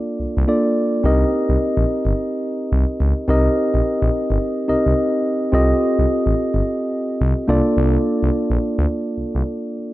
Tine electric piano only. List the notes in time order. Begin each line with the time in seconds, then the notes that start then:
Already playing: A#3 D4 F4 A4 D5
0.48 A#3 D4 F4 A4 D5
1.03 C4 D#4 G4 A#4 D#5
3.28 C4 D#4 G4 A#4 D#5
4.68 C4 D#4 G4 A#4 D#5
5.52 C4 F4 G4 A4 D#5
7.48 A#3 D4 F4 A4 D5